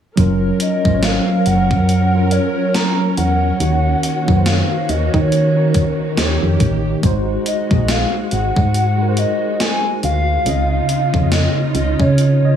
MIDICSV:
0, 0, Header, 1, 6, 480
1, 0, Start_track
1, 0, Tempo, 857143
1, 99, Time_signature, 4, 2, 24, 8
1, 7036, End_track
2, 0, Start_track
2, 0, Title_t, "Soft synth lead"
2, 0, Program_c, 0, 80
2, 344, Note_on_c, 0, 75, 93
2, 584, Note_on_c, 0, 77, 98
2, 593, Note_off_c, 0, 75, 0
2, 816, Note_off_c, 0, 77, 0
2, 820, Note_on_c, 0, 78, 119
2, 1299, Note_on_c, 0, 73, 97
2, 1307, Note_off_c, 0, 78, 0
2, 1536, Note_on_c, 0, 82, 120
2, 1544, Note_off_c, 0, 73, 0
2, 1776, Note_off_c, 0, 82, 0
2, 1779, Note_on_c, 0, 78, 127
2, 2502, Note_on_c, 0, 77, 96
2, 2510, Note_off_c, 0, 78, 0
2, 2742, Note_on_c, 0, 75, 100
2, 2750, Note_off_c, 0, 77, 0
2, 2878, Note_on_c, 0, 73, 100
2, 2886, Note_off_c, 0, 75, 0
2, 3699, Note_off_c, 0, 73, 0
2, 4186, Note_on_c, 0, 75, 96
2, 4430, Note_on_c, 0, 77, 102
2, 4438, Note_off_c, 0, 75, 0
2, 4633, Note_off_c, 0, 77, 0
2, 4633, Note_on_c, 0, 77, 75
2, 4665, Note_on_c, 0, 78, 126
2, 4673, Note_off_c, 0, 77, 0
2, 5143, Note_on_c, 0, 75, 101
2, 5151, Note_off_c, 0, 78, 0
2, 5380, Note_off_c, 0, 75, 0
2, 5384, Note_on_c, 0, 80, 119
2, 5605, Note_off_c, 0, 80, 0
2, 5625, Note_on_c, 0, 77, 127
2, 6319, Note_off_c, 0, 77, 0
2, 6346, Note_on_c, 0, 75, 93
2, 6565, Note_off_c, 0, 75, 0
2, 6585, Note_on_c, 0, 75, 105
2, 6724, Note_on_c, 0, 73, 97
2, 6732, Note_off_c, 0, 75, 0
2, 7036, Note_off_c, 0, 73, 0
2, 7036, End_track
3, 0, Start_track
3, 0, Title_t, "Tine electric piano"
3, 0, Program_c, 1, 4
3, 88, Note_on_c, 1, 54, 94
3, 95, Note_on_c, 1, 61, 83
3, 103, Note_on_c, 1, 65, 84
3, 111, Note_on_c, 1, 70, 101
3, 214, Control_c, 1, 64, 127
3, 327, Note_off_c, 1, 54, 0
3, 331, Note_off_c, 1, 61, 0
3, 335, Note_off_c, 1, 65, 0
3, 339, Note_off_c, 1, 70, 0
3, 468, Note_on_c, 1, 54, 75
3, 476, Note_on_c, 1, 61, 72
3, 484, Note_on_c, 1, 65, 71
3, 492, Note_on_c, 1, 72, 69
3, 515, Note_off_c, 1, 72, 0
3, 528, Note_on_c, 1, 73, 81
3, 936, Note_off_c, 1, 54, 0
3, 940, Note_off_c, 1, 61, 0
3, 944, Note_off_c, 1, 65, 0
3, 966, Note_off_c, 1, 73, 0
3, 1189, Note_on_c, 1, 54, 78
3, 1197, Note_on_c, 1, 61, 71
3, 1204, Note_on_c, 1, 65, 75
3, 1213, Note_on_c, 1, 70, 83
3, 1727, Note_off_c, 1, 54, 0
3, 1730, Note_off_c, 1, 61, 0
3, 1734, Note_off_c, 1, 65, 0
3, 1739, Note_off_c, 1, 70, 0
3, 2009, Note_on_c, 1, 51, 82
3, 2017, Note_on_c, 1, 63, 72
3, 2024, Note_on_c, 1, 66, 72
3, 2026, Control_c, 1, 64, 0
3, 2032, Note_on_c, 1, 73, 84
3, 2120, Control_c, 1, 64, 127
3, 2248, Note_off_c, 1, 51, 0
3, 2252, Note_off_c, 1, 63, 0
3, 2255, Note_off_c, 1, 66, 0
3, 2259, Note_off_c, 1, 73, 0
3, 2388, Note_on_c, 1, 51, 75
3, 2396, Note_on_c, 1, 63, 72
3, 2403, Note_on_c, 1, 66, 66
3, 2411, Note_on_c, 1, 71, 69
3, 2435, Note_off_c, 1, 71, 0
3, 2448, Note_on_c, 1, 72, 83
3, 2856, Note_off_c, 1, 51, 0
3, 2860, Note_off_c, 1, 63, 0
3, 2864, Note_off_c, 1, 66, 0
3, 2886, Note_off_c, 1, 72, 0
3, 3107, Note_on_c, 1, 51, 75
3, 3116, Note_on_c, 1, 63, 73
3, 3123, Note_on_c, 1, 66, 69
3, 3132, Note_on_c, 1, 70, 86
3, 3440, Note_off_c, 1, 51, 0
3, 3447, Note_on_c, 1, 51, 98
3, 3448, Note_off_c, 1, 63, 0
3, 3455, Note_on_c, 1, 63, 89
3, 3461, Note_off_c, 1, 66, 0
3, 3462, Note_on_c, 1, 67, 84
3, 3466, Note_off_c, 1, 70, 0
3, 3466, Control_c, 1, 64, 0
3, 3470, Note_on_c, 1, 72, 87
3, 3507, Note_off_c, 1, 72, 0
3, 3507, Note_on_c, 1, 73, 112
3, 3582, Control_c, 1, 64, 127
3, 3852, Note_off_c, 1, 51, 0
3, 3856, Note_off_c, 1, 63, 0
3, 3860, Note_off_c, 1, 67, 0
3, 3882, Note_off_c, 1, 73, 0
3, 3928, Note_on_c, 1, 56, 90
3, 3937, Note_on_c, 1, 63, 83
3, 3944, Note_on_c, 1, 66, 85
3, 3945, Control_c, 1, 64, 0
3, 3952, Note_on_c, 1, 72, 106
3, 4033, Control_c, 1, 64, 127
3, 4167, Note_off_c, 1, 56, 0
3, 4171, Note_off_c, 1, 63, 0
3, 4175, Note_off_c, 1, 66, 0
3, 4179, Note_off_c, 1, 72, 0
3, 4308, Note_on_c, 1, 56, 75
3, 4315, Note_on_c, 1, 63, 69
3, 4323, Note_on_c, 1, 66, 69
3, 4331, Note_on_c, 1, 68, 89
3, 4776, Note_off_c, 1, 56, 0
3, 4780, Note_off_c, 1, 63, 0
3, 4784, Note_off_c, 1, 66, 0
3, 4788, Note_off_c, 1, 68, 0
3, 5029, Note_on_c, 1, 56, 79
3, 5037, Note_on_c, 1, 63, 76
3, 5044, Note_on_c, 1, 66, 70
3, 5052, Note_on_c, 1, 70, 72
3, 5075, Note_off_c, 1, 70, 0
3, 5089, Note_on_c, 1, 72, 85
3, 5567, Note_off_c, 1, 56, 0
3, 5570, Note_off_c, 1, 63, 0
3, 5574, Note_off_c, 1, 66, 0
3, 5596, Note_off_c, 1, 72, 0
3, 5849, Note_on_c, 1, 49, 81
3, 5858, Note_on_c, 1, 60, 75
3, 5864, Note_on_c, 1, 65, 69
3, 5866, Control_c, 1, 64, 0
3, 5873, Note_on_c, 1, 75, 87
3, 5979, Control_c, 1, 64, 127
3, 6088, Note_off_c, 1, 49, 0
3, 6092, Note_off_c, 1, 60, 0
3, 6095, Note_off_c, 1, 65, 0
3, 6099, Note_off_c, 1, 75, 0
3, 6230, Note_on_c, 1, 49, 75
3, 6237, Note_on_c, 1, 60, 69
3, 6245, Note_on_c, 1, 65, 73
3, 6253, Note_on_c, 1, 73, 66
3, 6276, Note_off_c, 1, 73, 0
3, 6289, Note_on_c, 1, 75, 81
3, 6697, Note_off_c, 1, 49, 0
3, 6701, Note_off_c, 1, 60, 0
3, 6705, Note_off_c, 1, 65, 0
3, 6727, Note_off_c, 1, 75, 0
3, 6950, Note_on_c, 1, 49, 79
3, 6958, Note_on_c, 1, 61, 67
3, 6966, Note_on_c, 1, 65, 69
3, 6972, Note_on_c, 1, 75, 85
3, 7036, Note_off_c, 1, 49, 0
3, 7036, Note_off_c, 1, 61, 0
3, 7036, Note_off_c, 1, 65, 0
3, 7036, Note_off_c, 1, 75, 0
3, 7036, End_track
4, 0, Start_track
4, 0, Title_t, "String section"
4, 0, Program_c, 2, 48
4, 95, Note_on_c, 2, 70, 83
4, 96, Note_on_c, 2, 54, 77
4, 96, Note_on_c, 2, 61, 70
4, 1998, Note_off_c, 2, 54, 0
4, 1998, Note_off_c, 2, 70, 0
4, 2019, Note_on_c, 2, 51, 80
4, 2019, Note_on_c, 2, 58, 73
4, 2021, Note_on_c, 2, 66, 90
4, 3444, Note_off_c, 2, 58, 0
4, 3445, Note_off_c, 2, 66, 0
4, 3459, Note_on_c, 2, 58, 69
4, 3460, Note_on_c, 2, 67, 82
4, 3915, Note_off_c, 2, 61, 0
4, 3919, Note_off_c, 2, 51, 0
4, 3934, Note_off_c, 2, 58, 0
4, 3934, Note_off_c, 2, 67, 0
4, 3939, Note_on_c, 2, 56, 78
4, 3940, Note_on_c, 2, 66, 87
4, 5840, Note_off_c, 2, 56, 0
4, 5840, Note_off_c, 2, 66, 0
4, 5859, Note_on_c, 2, 49, 75
4, 5859, Note_on_c, 2, 63, 73
4, 5860, Note_on_c, 2, 65, 89
4, 7036, Note_off_c, 2, 49, 0
4, 7036, Note_off_c, 2, 63, 0
4, 7036, Note_off_c, 2, 65, 0
4, 7036, End_track
5, 0, Start_track
5, 0, Title_t, "FM bass"
5, 0, Program_c, 3, 39
5, 98, Note_on_c, 3, 30, 99
5, 290, Note_off_c, 3, 30, 0
5, 476, Note_on_c, 3, 32, 98
5, 669, Note_off_c, 3, 32, 0
5, 819, Note_on_c, 3, 30, 99
5, 956, Note_on_c, 3, 42, 97
5, 965, Note_off_c, 3, 30, 0
5, 1341, Note_off_c, 3, 42, 0
5, 1779, Note_on_c, 3, 40, 89
5, 1971, Note_off_c, 3, 40, 0
5, 2018, Note_on_c, 3, 39, 100
5, 2210, Note_off_c, 3, 39, 0
5, 2398, Note_on_c, 3, 42, 93
5, 2590, Note_off_c, 3, 42, 0
5, 2739, Note_on_c, 3, 39, 92
5, 2850, Note_off_c, 3, 39, 0
5, 2877, Note_on_c, 3, 51, 99
5, 3261, Note_off_c, 3, 51, 0
5, 3459, Note_on_c, 3, 39, 103
5, 3570, Note_off_c, 3, 39, 0
5, 3598, Note_on_c, 3, 41, 83
5, 3679, Note_off_c, 3, 41, 0
5, 3699, Note_on_c, 3, 33, 98
5, 3891, Note_off_c, 3, 33, 0
5, 3939, Note_on_c, 3, 32, 102
5, 4131, Note_off_c, 3, 32, 0
5, 4317, Note_on_c, 3, 34, 101
5, 4509, Note_off_c, 3, 34, 0
5, 4660, Note_on_c, 3, 32, 88
5, 4771, Note_off_c, 3, 32, 0
5, 4798, Note_on_c, 3, 44, 104
5, 5181, Note_off_c, 3, 44, 0
5, 5619, Note_on_c, 3, 38, 91
5, 5811, Note_off_c, 3, 38, 0
5, 5860, Note_on_c, 3, 37, 109
5, 6051, Note_off_c, 3, 37, 0
5, 6238, Note_on_c, 3, 41, 89
5, 6430, Note_off_c, 3, 41, 0
5, 6578, Note_on_c, 3, 37, 98
5, 6689, Note_off_c, 3, 37, 0
5, 6718, Note_on_c, 3, 49, 94
5, 7036, Note_off_c, 3, 49, 0
5, 7036, End_track
6, 0, Start_track
6, 0, Title_t, "Drums"
6, 97, Note_on_c, 9, 42, 72
6, 98, Note_on_c, 9, 36, 111
6, 153, Note_off_c, 9, 42, 0
6, 154, Note_off_c, 9, 36, 0
6, 336, Note_on_c, 9, 42, 94
6, 392, Note_off_c, 9, 42, 0
6, 477, Note_on_c, 9, 36, 99
6, 533, Note_off_c, 9, 36, 0
6, 575, Note_on_c, 9, 38, 120
6, 577, Note_on_c, 9, 42, 81
6, 631, Note_off_c, 9, 38, 0
6, 633, Note_off_c, 9, 42, 0
6, 816, Note_on_c, 9, 42, 62
6, 872, Note_off_c, 9, 42, 0
6, 956, Note_on_c, 9, 36, 94
6, 1012, Note_off_c, 9, 36, 0
6, 1057, Note_on_c, 9, 42, 65
6, 1113, Note_off_c, 9, 42, 0
6, 1294, Note_on_c, 9, 42, 72
6, 1350, Note_off_c, 9, 42, 0
6, 1537, Note_on_c, 9, 38, 119
6, 1538, Note_on_c, 9, 42, 67
6, 1593, Note_off_c, 9, 38, 0
6, 1594, Note_off_c, 9, 42, 0
6, 1778, Note_on_c, 9, 42, 64
6, 1834, Note_off_c, 9, 42, 0
6, 2018, Note_on_c, 9, 42, 71
6, 2074, Note_off_c, 9, 42, 0
6, 2259, Note_on_c, 9, 42, 89
6, 2315, Note_off_c, 9, 42, 0
6, 2397, Note_on_c, 9, 36, 103
6, 2453, Note_off_c, 9, 36, 0
6, 2497, Note_on_c, 9, 38, 124
6, 2499, Note_on_c, 9, 42, 81
6, 2553, Note_off_c, 9, 38, 0
6, 2555, Note_off_c, 9, 42, 0
6, 2739, Note_on_c, 9, 42, 59
6, 2795, Note_off_c, 9, 42, 0
6, 2877, Note_on_c, 9, 36, 91
6, 2933, Note_off_c, 9, 36, 0
6, 2980, Note_on_c, 9, 42, 66
6, 3036, Note_off_c, 9, 42, 0
6, 3216, Note_on_c, 9, 42, 71
6, 3218, Note_on_c, 9, 36, 105
6, 3272, Note_off_c, 9, 42, 0
6, 3274, Note_off_c, 9, 36, 0
6, 3458, Note_on_c, 9, 38, 117
6, 3459, Note_on_c, 9, 42, 63
6, 3514, Note_off_c, 9, 38, 0
6, 3515, Note_off_c, 9, 42, 0
6, 3697, Note_on_c, 9, 42, 61
6, 3698, Note_on_c, 9, 36, 94
6, 3753, Note_off_c, 9, 42, 0
6, 3754, Note_off_c, 9, 36, 0
6, 3938, Note_on_c, 9, 36, 117
6, 3939, Note_on_c, 9, 42, 70
6, 3994, Note_off_c, 9, 36, 0
6, 3995, Note_off_c, 9, 42, 0
6, 4177, Note_on_c, 9, 42, 91
6, 4233, Note_off_c, 9, 42, 0
6, 4317, Note_on_c, 9, 36, 100
6, 4373, Note_off_c, 9, 36, 0
6, 4415, Note_on_c, 9, 38, 122
6, 4417, Note_on_c, 9, 42, 78
6, 4471, Note_off_c, 9, 38, 0
6, 4473, Note_off_c, 9, 42, 0
6, 4655, Note_on_c, 9, 42, 57
6, 4711, Note_off_c, 9, 42, 0
6, 4796, Note_on_c, 9, 36, 94
6, 4852, Note_off_c, 9, 36, 0
6, 4897, Note_on_c, 9, 42, 69
6, 4953, Note_off_c, 9, 42, 0
6, 5134, Note_on_c, 9, 42, 75
6, 5190, Note_off_c, 9, 42, 0
6, 5376, Note_on_c, 9, 38, 120
6, 5378, Note_on_c, 9, 42, 68
6, 5432, Note_off_c, 9, 38, 0
6, 5434, Note_off_c, 9, 42, 0
6, 5618, Note_on_c, 9, 42, 59
6, 5674, Note_off_c, 9, 42, 0
6, 5858, Note_on_c, 9, 42, 70
6, 5914, Note_off_c, 9, 42, 0
6, 6098, Note_on_c, 9, 42, 96
6, 6154, Note_off_c, 9, 42, 0
6, 6237, Note_on_c, 9, 36, 99
6, 6293, Note_off_c, 9, 36, 0
6, 6337, Note_on_c, 9, 38, 123
6, 6340, Note_on_c, 9, 42, 79
6, 6393, Note_off_c, 9, 38, 0
6, 6396, Note_off_c, 9, 42, 0
6, 6578, Note_on_c, 9, 42, 62
6, 6634, Note_off_c, 9, 42, 0
6, 6717, Note_on_c, 9, 36, 88
6, 6773, Note_off_c, 9, 36, 0
6, 6821, Note_on_c, 9, 42, 69
6, 6877, Note_off_c, 9, 42, 0
6, 7036, End_track
0, 0, End_of_file